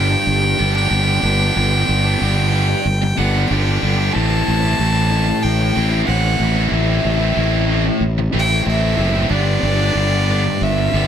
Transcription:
Already playing: G1 G2 G5
0.09 muted distorted electric guitar stroke
0.27 G1
0.42 muted distorted electric guitar stroke
0.58 G1 D3 G3 B3 D4
0.75 G3 B3 D4
0.89 G1 G2 D3 G3 B3 D4
1.23 G1 D3 G3 B3 D4
1.39 G3 B3 D4
1.55 G1 G2 D3 G3 B3 D4
1.89 G1
2.05 G3 B3 D4
2.21 G1 G2 D3 G3 B3 D4
2.53 D3 G3 B3 D4
2.68 muted distorted electric guitar stroke
2.85 G1
3.01 muted distorted electric guitar stroke
3.17 G1 D3 G3 B3 D4 F#5
3.35 G3 B3 D4
3.48 G1 G2 D3 G3 G5
3.52 B3 D4
3.81 G1 D3 G3 B3 D4
3.98 G3 B3 D4
4.13 A1 A2 E3 A3 C4 E4 A5
4.48 A1
4.62 A3 C4 E4
4.79 A1 A2 E3 A3 C4 E4
5.11 E3 A3 C4 E4
5.29 muted distorted electric guitar stroke
5.43 A1 G5
5.61 muted distorted electric guitar stroke
5.76 A1 E3 A3 C4 E4
5.92 A3 C4 E4
6.07 A1 A2 E3 A3 C4 E4 F#5
6.40 A1 E3 A3 C4 E4
6.56 A3 C4 E4
6.71 A1 A2 E3 A3 C4 E4 E5
7.05 A1
7.19 A3 C4 E4
7.37 A1 A2 E3 A3 C4 E4
7.69 E3 A3 C4 E4
7.86 muted distorted electric guitar stroke
8.01 A1
8.18 muted distorted electric guitar stroke
8.33 A1 E3 A3 C4 E4
8.40 G5
8.50 A3 C4 E4
8.65 A1 A2 E3 A3 C4 E4
8.69 E5
8.97 F#1 E3 A3 C4 E4
9.13 A3 C4 E4
9.29 G1 G2 D3 G3 B3 D4 D5
9.63 G1
9.79 G3 B3 D4
9.94 G1 G2 D3 G3 B3 D4
10.29 D3 G3 B3 D4
10.45 muted distorted electric guitar stroke
10.61 G1 E5
10.78 muted distorted electric guitar stroke
10.93 G1 D3 G3 B3 D4

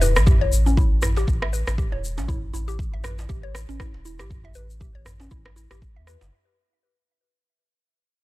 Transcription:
Already playing: E1
0.01 B4, djembe tone, shaker
0.16 A1, cross-stick, shaker
0.27 G4, kick, djembe bass, shaker
0.41 C#5, djembe tone
0.52 A1, shaker
0.66 C#4, djembe tone, shaker
0.77 E4, kick, shaker
0.92 A1
1.02 E4, cross-stick, djembe tone, djembe bass, shaker
1.17 G4, djembe slap, shaker
1.27 A1, kick, djembe tone, shaker
1.42 E5, cross-stick
1.53 B4, shaker
1.67 A1, cross-stick, djembe slap, djembe tone, shaker
1.78 G4, kick, shaker
1.92 E1 C#5, djembe tone
2.04 shaker
2.18 A1 C#4, djembe slap, shaker
2.28 E4, kick, djembe tone, djembe bass, shaker
2.54 A1 E4, djembe tone, shaker
2.68 G4, shaker
2.79 kick, shaker
2.93 A1 E5, djembe tone
3.04 B4, cross-stick, djembe bass, shaker
3.19 djembe slap, djembe tone, shaker
3.29 A1 G4, kick, shaker
3.43 C#5
3.55 cross-stick, djembe tone, shaker
3.69 A1 C#4, shaker
3.80 E4, kick, cross-stick, djembe tone, shaker
3.94 E1, djembe slap
4.05 E4, shaker
4.19 A1 G4, cross-stick, djembe tone, shaker
4.30 kick, djembe bass, shaker
4.44 E5, djembe tone
4.55 A1 B4, shaker
4.70 shaker
4.80 G4, kick, djembe tone, shaker
4.95 A1 C#5
5.05 cross-stick, djembe tone, djembe bass, shaker
5.20 C#4, djembe slap, shaker
5.31 A1 E4, kick, shaker
5.45 cross-stick, djembe slap, djembe tone
5.56 E4, shaker
5.71 A1 G4, cross-stick, djembe slap, djembe tone, shaker
5.82 kick, shaker
5.96 E2 E5
6.07 B4, cross-stick, djembe tone, shaker
6.21 G1, djembe slap, shaker

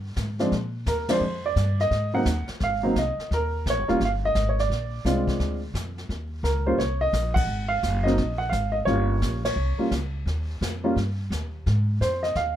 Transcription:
Already playing: G2
0.16 G#2, kick, snare, hi-hat pedal
0.39 F3 G#3 C4 D4, snare
0.52 A#2, brush sweep, kick, snare
0.86 D#2 A#4, kick, snare, hi-hat pedal
1.09 F3 G#3 C4 D4 C5, snare, ride
1.20 F2, brush sweep
1.46 D5
1.56 G2, kick, snare, hi-hat pedal
1.80 D#5, snare
1.91 G#2, brush sweep, kick, snare
2.14 F#3 A#3 C4 D#4 F#5
2.25 D#2, kick, snare, hi-hat pedal
2.48 muted upright bass stroke, snare
2.60 G#1 F5, brush sweep, kick, snare
2.83 F#3 A#3 C4 D#4
2.96 C2 D#5, kick, snare, hi-hat pedal
3.18 muted upright bass stroke, snare
3.31 D#2 A#4, brush sweep, kick, snare
3.66 A#1, kick, snare, hi-hat pedal
3.70 C#5
3.79 G1
3.88 D#1 G3 A#3 C#4 F4, snare
4.00 G1, brush sweep, kick, snare
4.05 F5
4.25 D#5
4.35 G#1, kick, snare, hi-hat pedal
4.49 C#5
4.59 D5, snare
4.70 A#1, brush sweep, kick, snare
5.05 C2 G#3 C4 D4 F4, kick, snare, hi-hat pedal
5.28 kick, snare
5.40 D2, brush sweep, kick, snare
5.74 F2, kick, snare, hi-hat pedal
5.98 snare
6.09 D#2, brush sweep, kick, snare
6.43 C#2 A#4, kick, snare, hi-hat pedal
6.66 G3 A#3 C#4 F4 C5
6.78 C2 C#5, brush sweep, kick, snare
7.01 D#5
7.13 A#1, kick, snare, hi-hat pedal
7.34 F#5, kick, ride
7.47 G#1, brush sweep
7.68 F5
7.83 F#1, kick, snare, hi-hat pedal
8.04 F#3 A#3 C4 D#4 D#5, snare
8.18 A#1, brush sweep, kick, snare
8.38 F#5
8.49 G#1 F5, kick, snare, hi-hat pedal
8.72 D#5
8.85 G1 G3 A#3 C#4 F4 C#5, brush sweep, kick, snare
9.22 A#1, kick, snare, hi-hat pedal
9.45 C#5, snare, ride
9.56 C2, brush sweep
9.78 G3 A#3 C#4 F4, muted upright bass stroke
9.91 C#2, kick, snare, hi-hat pedal
10.26 D#2, brush sweep, kick, snare
10.61 F2, kick, snare, hi-hat pedal
10.84 G3 A#3 C#4 F4
10.96 G2, brush sweep, kick, snare
11.30 D#2, kick, snare, hi-hat pedal
11.66 G#2, brush sweep, kick, snare
12.01 F2 C5, kick, snare, hi-hat pedal
12.23 D#5, snare
12.35 D#2 F5, brush sweep, kick, snare

